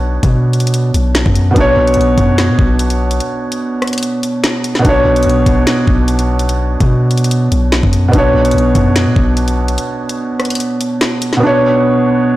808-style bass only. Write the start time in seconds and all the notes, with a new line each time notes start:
Already playing: B1
0.23 B2
0.94 B1
1.26 F#2
1.56 B1
1.77 B1
1.97 B1
2.18 F#2
2.49 B2
2.59 B1
4.85 B1
5.05 B1
5.26 B1
5.46 B1
5.88 B1
6.80 B2
7.52 B1
7.83 F#2
8.13 B1
8.34 B1
8.55 B1
8.75 F#2
9.07 B2
9.16 B1